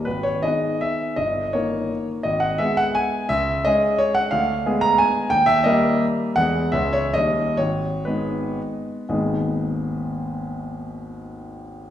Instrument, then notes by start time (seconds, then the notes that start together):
grand piano
0.05 G#1 B4
0.23 C#5
0.43 D#3 B3 G#4 D#5
0.81 E5
1.16 G1 D#5
1.53 D#3 A#3 A#4 C#5
2.23 G#1 D#5
2.40 F#5
2.58 G#3 B3 G#4 E5
2.77 F#5
2.95 G#5
3.29 C#2 E5
3.65 G#3 C#4 G#4 D#5
3.98 C#5
4.15 F#5
4.31 D2 F5
4.66 G#3 B3 G#4
4.81 A#5
4.98 G#5
5.30 D#2 G5
5.46 E5
5.64 G3 A#3 A#4 D#5
6.36 E2 G#3 B3 G#4 F#5
6.72 C#2 G#3 C#4 G#4 E5
6.93 C#5
7.14 D#2 G3 C#4 D#4 D#5
7.57 G#1 C#5
8.05 G#3 B3 D#4 B4
9.09 G#1 D#2 G#3 B3 D#4 G#4